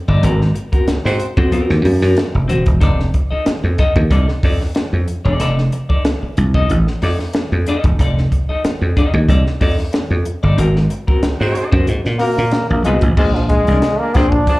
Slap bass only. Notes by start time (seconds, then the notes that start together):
0.08 G1
0.23 G#1
0.73 muted slap bass stroke
0.88 muted slap bass stroke
1.05 G#2
1.37 F2
1.70 D#2
1.85 F#2
2.02 F#2
2.35 F1
2.50 D#1
2.67 E1
2.82 F1
3.32 muted slap bass stroke
3.47 muted slap bass stroke
3.64 F2
3.96 D#2
4.11 C2
4.43 F2
4.93 F2
5.25 E1
5.40 F1
5.90 muted slap bass stroke
6.23 muted slap bass stroke
6.38 C2
6.70 A1
7.03 F2
7.52 F2
7.84 E1
7.99 F1
8.49 muted slap bass stroke
8.64 muted slap bass stroke
8.82 F2
9.14 D#2
9.29 C2
9.61 F2
10.11 F2
10.43 G1
10.58 G#1
11.08 muted slap bass stroke
11.23 muted slap bass stroke
11.41 G#2
11.73 F#2
11.88 G#2
12.06 A#2
12.38 A#2
12.70 A#1
12.85 C2
13.02 A1
13.17 A#1
13.68 C2
14.16 A#1